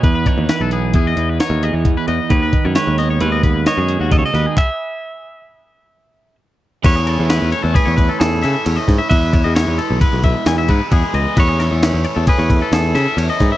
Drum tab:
CC |----------|----------|----------|x---------|
RD |----------|----------|----------|xxxxxxxxxx|
HH |xxxxxxxxxx|xxxxxxxxxx|----------|----------|
CP |----------|----------|x---------|----------|
SD |--o---o---|--oo--o-oo|----------|--o---oo-o|
BD |oo--o---o-|oo---o--o-|o---------|o---oo---o|

CC |----------|----------|
RD |xxxxxxxxxx|xxxxxxxxxx|
HH |----------|----------|
CP |----------|----------|
SD |--o---o---|-oo---oo-o|
BD |oo--oo-oo-|o---oo---o|